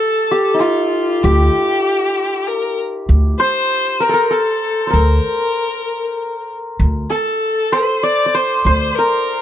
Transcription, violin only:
0, 0, Header, 1, 2, 480
1, 0, Start_track
1, 0, Tempo, 618557
1, 954, Time_signature, 3, 2, 24, 8
1, 7308, End_track
2, 0, Start_track
2, 0, Title_t, "Violin"
2, 0, Program_c, 0, 40
2, 0, Note_on_c, 0, 69, 85
2, 475, Note_on_c, 0, 65, 69
2, 487, Note_off_c, 0, 69, 0
2, 953, Note_on_c, 0, 67, 82
2, 964, Note_off_c, 0, 65, 0
2, 1913, Note_on_c, 0, 70, 74
2, 1925, Note_off_c, 0, 67, 0
2, 2154, Note_off_c, 0, 70, 0
2, 2632, Note_on_c, 0, 72, 96
2, 3119, Note_on_c, 0, 70, 80
2, 3130, Note_off_c, 0, 72, 0
2, 3360, Note_on_c, 0, 69, 76
2, 3371, Note_off_c, 0, 70, 0
2, 3838, Note_on_c, 0, 70, 77
2, 3850, Note_off_c, 0, 69, 0
2, 5035, Note_off_c, 0, 70, 0
2, 5506, Note_on_c, 0, 69, 81
2, 5993, Note_on_c, 0, 72, 75
2, 6004, Note_off_c, 0, 69, 0
2, 6232, Note_on_c, 0, 74, 85
2, 6244, Note_off_c, 0, 72, 0
2, 6474, Note_on_c, 0, 72, 74
2, 6485, Note_off_c, 0, 74, 0
2, 6701, Note_off_c, 0, 72, 0
2, 6706, Note_on_c, 0, 72, 75
2, 6944, Note_on_c, 0, 70, 85
2, 6956, Note_off_c, 0, 72, 0
2, 7308, Note_off_c, 0, 70, 0
2, 7308, End_track
0, 0, End_of_file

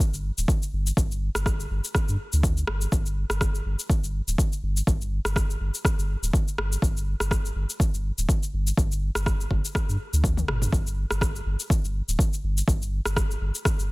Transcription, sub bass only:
0, 0, Header, 1, 2, 480
1, 0, Start_track
1, 0, Tempo, 487805
1, 955, Time_signature, 4, 2, 24, 8
1, 13694, End_track
2, 0, Start_track
2, 0, Title_t, "Sub bass"
2, 0, Program_c, 0, 38
2, 130, Note_on_c, 0, 31, 89
2, 302, Note_off_c, 0, 31, 0
2, 371, Note_on_c, 0, 26, 97
2, 450, Note_off_c, 0, 26, 0
2, 719, Note_on_c, 0, 31, 84
2, 902, Note_off_c, 0, 31, 0
2, 954, Note_on_c, 0, 31, 96
2, 1273, Note_off_c, 0, 31, 0
2, 1330, Note_on_c, 0, 31, 77
2, 1633, Note_off_c, 0, 31, 0
2, 1678, Note_on_c, 0, 31, 96
2, 1775, Note_off_c, 0, 31, 0
2, 2050, Note_on_c, 0, 43, 78
2, 2129, Note_off_c, 0, 43, 0
2, 2293, Note_on_c, 0, 38, 87
2, 2595, Note_off_c, 0, 38, 0
2, 2640, Note_on_c, 0, 31, 100
2, 2823, Note_off_c, 0, 31, 0
2, 2876, Note_on_c, 0, 31, 97
2, 3194, Note_off_c, 0, 31, 0
2, 3246, Note_on_c, 0, 31, 78
2, 3551, Note_off_c, 0, 31, 0
2, 3597, Note_on_c, 0, 31, 99
2, 3695, Note_off_c, 0, 31, 0
2, 3968, Note_on_c, 0, 31, 88
2, 4141, Note_off_c, 0, 31, 0
2, 4206, Note_on_c, 0, 26, 98
2, 4287, Note_off_c, 0, 26, 0
2, 4552, Note_on_c, 0, 31, 83
2, 4739, Note_off_c, 0, 31, 0
2, 4793, Note_on_c, 0, 31, 98
2, 5113, Note_off_c, 0, 31, 0
2, 5165, Note_on_c, 0, 31, 79
2, 5471, Note_off_c, 0, 31, 0
2, 5514, Note_on_c, 0, 31, 101
2, 5613, Note_off_c, 0, 31, 0
2, 5883, Note_on_c, 0, 31, 88
2, 6059, Note_off_c, 0, 31, 0
2, 6124, Note_on_c, 0, 26, 98
2, 6206, Note_off_c, 0, 26, 0
2, 6474, Note_on_c, 0, 31, 84
2, 6660, Note_off_c, 0, 31, 0
2, 6714, Note_on_c, 0, 31, 99
2, 7033, Note_off_c, 0, 31, 0
2, 7086, Note_on_c, 0, 31, 77
2, 7391, Note_off_c, 0, 31, 0
2, 7432, Note_on_c, 0, 31, 99
2, 7532, Note_off_c, 0, 31, 0
2, 7807, Note_on_c, 0, 31, 88
2, 7981, Note_off_c, 0, 31, 0
2, 8049, Note_on_c, 0, 26, 99
2, 8129, Note_off_c, 0, 26, 0
2, 8397, Note_on_c, 0, 31, 85
2, 8582, Note_off_c, 0, 31, 0
2, 8636, Note_on_c, 0, 31, 102
2, 8954, Note_off_c, 0, 31, 0
2, 9007, Note_on_c, 0, 31, 79
2, 9311, Note_off_c, 0, 31, 0
2, 9355, Note_on_c, 0, 31, 97
2, 9454, Note_off_c, 0, 31, 0
2, 9728, Note_on_c, 0, 43, 78
2, 9808, Note_off_c, 0, 43, 0
2, 9968, Note_on_c, 0, 38, 86
2, 10272, Note_off_c, 0, 38, 0
2, 10316, Note_on_c, 0, 31, 100
2, 10501, Note_off_c, 0, 31, 0
2, 10554, Note_on_c, 0, 31, 97
2, 10873, Note_off_c, 0, 31, 0
2, 10931, Note_on_c, 0, 31, 78
2, 11234, Note_off_c, 0, 31, 0
2, 11277, Note_on_c, 0, 31, 101
2, 11375, Note_off_c, 0, 31, 0
2, 11648, Note_on_c, 0, 31, 91
2, 11821, Note_off_c, 0, 31, 0
2, 11888, Note_on_c, 0, 26, 97
2, 11969, Note_off_c, 0, 26, 0
2, 12236, Note_on_c, 0, 31, 85
2, 12421, Note_off_c, 0, 31, 0
2, 12474, Note_on_c, 0, 31, 98
2, 12793, Note_off_c, 0, 31, 0
2, 12845, Note_on_c, 0, 31, 78
2, 13151, Note_off_c, 0, 31, 0
2, 13196, Note_on_c, 0, 31, 98
2, 13294, Note_off_c, 0, 31, 0
2, 13567, Note_on_c, 0, 31, 87
2, 13694, Note_off_c, 0, 31, 0
2, 13694, End_track
0, 0, End_of_file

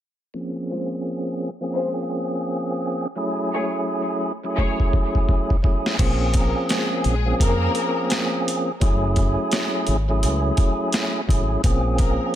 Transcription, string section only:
0, 0, Header, 1, 2, 480
1, 0, Start_track
1, 0, Key_signature, -5, "minor"
1, 0, Tempo, 705882
1, 235, Time_signature, 4, 2, 24, 8
1, 8399, End_track
2, 0, Start_track
2, 0, Title_t, "String section"
2, 0, Program_c, 0, 48
2, 472, Note_on_c, 0, 56, 88
2, 472, Note_on_c, 0, 65, 86
2, 472, Note_on_c, 0, 72, 103
2, 598, Note_off_c, 0, 65, 0
2, 599, Note_off_c, 0, 56, 0
2, 599, Note_off_c, 0, 72, 0
2, 1192, Note_on_c, 0, 56, 95
2, 1192, Note_on_c, 0, 65, 91
2, 1193, Note_on_c, 0, 72, 107
2, 1397, Note_off_c, 0, 56, 0
2, 1397, Note_off_c, 0, 65, 0
2, 1397, Note_off_c, 0, 72, 0
2, 2402, Note_on_c, 0, 68, 101
2, 2402, Note_on_c, 0, 73, 93
2, 2403, Note_on_c, 0, 57, 80
2, 2524, Note_off_c, 0, 68, 0
2, 2525, Note_off_c, 0, 57, 0
2, 2525, Note_off_c, 0, 73, 0
2, 3113, Note_on_c, 0, 57, 97
2, 3113, Note_on_c, 0, 68, 92
2, 3114, Note_on_c, 0, 73, 97
2, 3318, Note_off_c, 0, 57, 0
2, 3318, Note_off_c, 0, 68, 0
2, 3318, Note_off_c, 0, 73, 0
2, 4300, Note_on_c, 0, 58, 78
2, 4300, Note_on_c, 0, 70, 83
2, 4498, Note_off_c, 0, 58, 0
2, 4498, Note_off_c, 0, 70, 0
2, 4556, Note_on_c, 0, 56, 91
2, 4556, Note_on_c, 0, 68, 89
2, 4747, Note_off_c, 0, 68, 0
2, 4748, Note_off_c, 0, 56, 0
2, 4799, Note_on_c, 0, 56, 85
2, 4799, Note_on_c, 0, 68, 100
2, 4989, Note_off_c, 0, 56, 0
2, 4989, Note_off_c, 0, 68, 0
2, 5029, Note_on_c, 0, 58, 118
2, 5030, Note_on_c, 0, 70, 125
2, 5632, Note_off_c, 0, 58, 0
2, 5633, Note_off_c, 0, 70, 0
2, 8149, Note_on_c, 0, 58, 73
2, 8149, Note_on_c, 0, 70, 88
2, 8343, Note_off_c, 0, 58, 0
2, 8343, Note_off_c, 0, 70, 0
2, 8399, End_track
0, 0, End_of_file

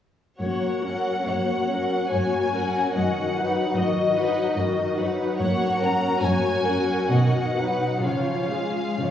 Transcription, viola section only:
0, 0, Header, 1, 2, 480
1, 0, Start_track
1, 0, Key_signature, 6, "major"
1, 0, Tempo, 858369
1, 232, Time_signature, 3, 2, 24, 8
1, 1188, Tempo, 820793
1, 3588, Tempo, 874636
1, 4068, Tempo, 953895
1, 5076, End_track
2, 0, Start_track
2, 0, Title_t, "Viola section"
2, 0, Program_c, 0, 48
2, 229, Note_on_c, 0, 66, 30
2, 231, Note_on_c, 0, 58, 30
2, 456, Note_off_c, 0, 66, 0
2, 457, Note_off_c, 0, 58, 0
2, 474, Note_on_c, 0, 54, 29
2, 474, Note_on_c, 0, 61, 30
2, 713, Note_off_c, 0, 54, 0
2, 714, Note_off_c, 0, 61, 0
2, 714, Note_on_c, 0, 66, 27
2, 717, Note_on_c, 0, 58, 28
2, 950, Note_on_c, 0, 61, 34
2, 951, Note_off_c, 0, 66, 0
2, 951, Note_on_c, 0, 54, 33
2, 953, Note_off_c, 0, 58, 0
2, 1186, Note_on_c, 0, 66, 33
2, 1187, Note_on_c, 0, 58, 30
2, 1188, Note_off_c, 0, 54, 0
2, 1188, Note_off_c, 0, 61, 0
2, 1414, Note_off_c, 0, 58, 0
2, 1414, Note_off_c, 0, 66, 0
2, 1433, Note_on_c, 0, 54, 31
2, 1436, Note_on_c, 0, 61, 28
2, 1673, Note_off_c, 0, 54, 0
2, 1674, Note_off_c, 0, 61, 0
2, 1683, Note_on_c, 0, 66, 33
2, 1687, Note_on_c, 0, 51, 34
2, 1899, Note_off_c, 0, 66, 0
2, 1902, Note_off_c, 0, 51, 0
2, 1918, Note_on_c, 0, 63, 38
2, 1921, Note_on_c, 0, 54, 38
2, 2150, Note_off_c, 0, 63, 0
2, 2152, Note_off_c, 0, 54, 0
2, 2156, Note_on_c, 0, 51, 36
2, 2156, Note_on_c, 0, 66, 36
2, 2383, Note_on_c, 0, 54, 42
2, 2386, Note_off_c, 0, 51, 0
2, 2386, Note_off_c, 0, 66, 0
2, 2388, Note_on_c, 0, 63, 41
2, 2617, Note_off_c, 0, 54, 0
2, 2620, Note_off_c, 0, 63, 0
2, 2622, Note_on_c, 0, 66, 39
2, 2623, Note_on_c, 0, 51, 41
2, 2843, Note_off_c, 0, 66, 0
2, 2844, Note_off_c, 0, 51, 0
2, 2862, Note_on_c, 0, 63, 38
2, 2864, Note_on_c, 0, 54, 37
2, 3105, Note_off_c, 0, 63, 0
2, 3106, Note_off_c, 0, 54, 0
2, 3108, Note_on_c, 0, 66, 42
2, 3112, Note_on_c, 0, 58, 42
2, 3332, Note_off_c, 0, 66, 0
2, 3333, Note_off_c, 0, 58, 0
2, 3339, Note_on_c, 0, 61, 41
2, 3343, Note_on_c, 0, 54, 36
2, 3583, Note_on_c, 0, 58, 36
2, 3584, Note_off_c, 0, 61, 0
2, 3586, Note_off_c, 0, 54, 0
2, 3587, Note_on_c, 0, 66, 36
2, 3820, Note_off_c, 0, 58, 0
2, 3822, Note_off_c, 0, 66, 0
2, 3824, Note_on_c, 0, 54, 42
2, 3824, Note_on_c, 0, 61, 42
2, 4068, Note_on_c, 0, 66, 36
2, 4069, Note_off_c, 0, 54, 0
2, 4069, Note_off_c, 0, 61, 0
2, 4071, Note_on_c, 0, 51, 37
2, 4283, Note_off_c, 0, 66, 0
2, 4285, Note_off_c, 0, 51, 0
2, 4297, Note_on_c, 0, 54, 30
2, 4301, Note_on_c, 0, 63, 30
2, 4533, Note_on_c, 0, 53, 30
2, 4536, Note_off_c, 0, 54, 0
2, 4538, Note_off_c, 0, 63, 0
2, 4538, Note_on_c, 0, 61, 28
2, 4761, Note_off_c, 0, 53, 0
2, 4764, Note_off_c, 0, 61, 0
2, 4777, Note_on_c, 0, 65, 28
2, 4779, Note_on_c, 0, 56, 29
2, 5015, Note_on_c, 0, 53, 24
2, 5015, Note_on_c, 0, 61, 27
2, 5025, Note_off_c, 0, 65, 0
2, 5026, Note_off_c, 0, 56, 0
2, 5076, Note_off_c, 0, 53, 0
2, 5076, Note_off_c, 0, 61, 0
2, 5076, End_track
0, 0, End_of_file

